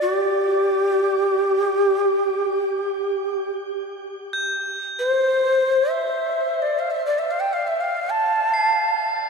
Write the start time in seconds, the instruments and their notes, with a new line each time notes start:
0.02 native american-style wooden flute G4
4.33 crotales G6
4.99 native american-style wooden flute C5
5.90 native american-style wooden flute E5
6.62 native american-style wooden flute D5
6.79 native american-style wooden flute F5
6.91 native american-style wooden flute E5
7.07 native american-style wooden flute D5
7.19 native american-style wooden flute E5
7.31 native american-style wooden flute F5
7.40 native american-style wooden flute G5
7.53 native american-style wooden flute F5
7.67 native american-style wooden flute E5
7.80 native american-style wooden flute F5
8.10 native american-style wooden flute A5
8.54 crotales C7